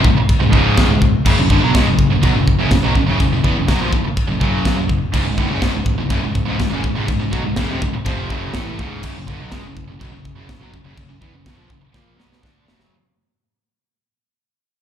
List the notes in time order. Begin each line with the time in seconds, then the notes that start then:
0.04 C#1 C#2 G#2, kick
0.14 muted picked electric bass stroke, muted overdriven electric guitar stroke, muted distorted electric guitar stroke
0.29 kick, china
0.39 C#1 C#2 G#2
0.50 C#1 C#2 G#2 C#3, kick
0.55 C#2 G#2 C#3
0.77 kick, snare, china
0.88 C#1 C#2 G#2
0.93 C#2 G#2
1.02 kick
1.26 F#1 F#2 C#3, kick, china, crash
1.37 F#1
1.41 F#2 C#3
1.50 G1 G2 D3, kick
1.61 B1 B2
1.65 B2 F#3
1.75 C#2 C#3 G#3, kick, snare, china
1.86 F#1 F#2 C#3
1.99 kick
2.11 F#1 F#2 C#3
2.23 B1 B2 F#3, kick, china
2.36 F#1 F#2 C#3
2.48 kick
2.60 F#1 F#2 C#3
2.71 F#1 F#2 C#3, kick, snare, china
2.85 B1 B2 F#3
2.95 F#1 F#2 C#3, kick
3.10 F#1 F#2 C#3
3.19 F#1 F#2, kick, china
3.23 F#2 C#3
3.34 F#1 F#2 C#3
3.44 E2 E3 B3, kick
3.57 F#1 F#2 C#3
3.68 B1 B2 F#3, kick, snare, china
3.80 A#1 A#2 F3
3.93 F#1 F#2 C#3, kick
4.06 muted overdriven electric guitar stroke, muted distorted electric guitar stroke
4.17 kick, china
4.30 F#1 F#2 C#3
4.41 F#1 F#2 C#3 F#3, kick
4.65 kick, snare, china
4.77 F#1 F#2 C#3
4.89 kick
5.14 C#1 C#2 G#2, kick, crash, china
5.25 C#1 C#2 G#2
5.38 D1 D2 A2, kick
5.49 F#1 F#2 C#3
5.60 G#1 G#2, kick, snare, china
5.64 G#2 D#3
5.73 C#1 C#2 G#2
5.86 kick
5.98 C#1 C#2 G#2
6.10 F#1 F#2 C#3, kick, china
6.21 C#1
6.25 C#2 G#2
6.35 kick
6.45 C#1 C#2 G#2
6.60 C#1 C#2 G#2, kick, snare, china
6.70 F#1 F#2 C#3
6.84 C#1 C#2 G#2, kick
6.95 C#1 C#2 G#2
7.08 C#1 C#2 G#2, kick, china
7.20 C#1 C#2 G#2
7.32 B1 B2 F#3, kick
7.45 C#1 C#2 G#2
7.56 F#1 F#2 C#3, kick, snare, china
7.69 F1 F2 C3
7.82 C#1 C#2 G#2, kick
7.94 muted distorted electric guitar stroke, muted overdriven electric guitar stroke
8.05 F1 F2 C3 F3, kick, china
8.29 F#1 F#2 C#3 F#3, kick
8.34 C#3
8.53 A1 A2 E3 A3, kick, snare, china
8.79 C#1 C#2 G#2 C#3, kick
9.03 F#1 F#2 C#3, kick, china, crash
9.16 F#1 F#2 C#3
9.28 G1 G2 D3, kick
9.41 B1 B2 F#3
9.51 C#2 C#3 G#3, kick, snare, china
9.62 F#1 F#2
9.67 F#2 C#3
9.77 kick
9.87 F#1 F#2 C#3
9.92 F#2 C#3
9.99 B1 B2 F#3, kick, china
10.04 F#3
10.11 F#1 F#2 C#3
10.25 kick
10.35 F#1 F#2
10.39 C#3
10.49 F#1 F#2 C#3, kick, snare, china
10.60 B1 B2 F#3
10.74 F#1 F#2 C#3, kick
10.84 F#1 F#2
10.88 F#2 C#3
10.97 F#1 F#2 C#3, kick, china
11.08 F#1 F#2 C#3
11.21 E2 E3 B3, kick
11.32 F#1 F#2 C#3
11.46 B1 B2 F#3, kick, snare, china
11.56 A#1 A#2 F3
11.70 F#1 F#2 C#3, kick
11.82 muted overdriven electric guitar stroke, muted distorted electric guitar stroke
11.94 A#1 A#2 F3 A#3, kick, snare
12.19 B1 B2 F#3 B3, snare
12.32 snare
12.43 D2 D3 A3 D4, kick, snare
12.65 F#1 F#2 C#3 F#3, snare
12.79 snare